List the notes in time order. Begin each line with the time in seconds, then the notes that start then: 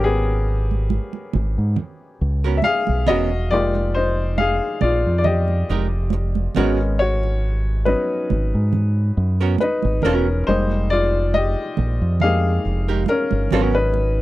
Already playing: G#1 F#3 A#3 B3 C#4 G4 A#4
0.04 B3 G#4
0.71 high conga
0.90 muted conga, high conga
1.13 muted conga
1.33 G#1, high conga, low conga
1.58 G#2
1.76 low conga
2.21 C#2
2.44 B3 C#4 F#4 A#4
2.57 E5
2.62 F5, muted hollow-body jazz guitar stroke, high conga
2.66 G#4
2.87 B1, high conga
3.06 E1 B3 C#4 F#4 A#4 D#5, low conga
3.51 F1 G#3 A#3 D#4 F4 G4 D5
3.75 muted conga
3.95 D#4 C5
4.38 G#4 F5, muted conga, high conga
4.81 A#1 F4 D5, high conga, low conga
5.06 F2
5.18 D5
5.24 G4 D#5, muted conga, low conga
5.48 muted conga
5.69 F1 G#3 D#4 G4 A#4
6.10 muted hollow-body jazz guitar stroke, muted conga, high conga
6.35 muted conga, high conga
6.55 G#1 G#3 B3 C#4 F#4 A#4, low conga
6.99 F#4 C#5
7.23 muted conga
7.85 F#3 B3 C#4 D#4 B4, muted conga, high conga
8.30 G#1, high conga, low conga
8.54 G#2
8.73 low conga
9.17 F#2
9.41 B3 C#4 F#4 A#4
9.58 B4, muted hollow-body jazz guitar stroke, muted conga, high conga
9.63 D#4
9.82 G#1, muted conga, high conga
10.02 E1 B3 C#4 F#4 A#4, low conga
10.47 F1 G3 G#3 A#3 D#4 C5
10.71 muted conga
10.90 F4 D5
11.34 G4 D#5, high conga
11.77 A#1, high conga, low conga
12.01 F2
12.20 G#3 A#3 D#4 G4 G#4 F5, low conga
12.65 F1
12.88 G#3 D#4 G4 A#4
13.06 A#4, muted hollow-body jazz guitar stroke, muted conga, high conga
13.10 C#4
13.31 G1, high conga
13.51 G#1 F#3 B3 C#4 F#4 A#4, low conga
13.75 D#4 B4
13.94 muted conga